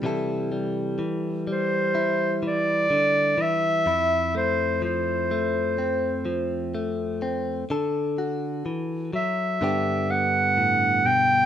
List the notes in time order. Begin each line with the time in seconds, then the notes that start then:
0.03 C3 E3 G3 E4 A4
0.52 G3
0.99 E3
1.47 G3
1.52 C5
1.95 E4
2.43 E3
2.47 D5
2.90 D3
3.38 E3 E5
3.86 F2 E4
4.35 A3 C5
4.82 F3 C5
5.31 A3
5.78 C4
6.25 F3
6.75 A3
7.22 C4
7.70 D3 A4
8.18 F#4
8.66 E3
9.13 F#3 E5
9.61 G2 D3 B3 D4 G4
10.10 B3 F#5
10.57 A2
11.05 B2 G5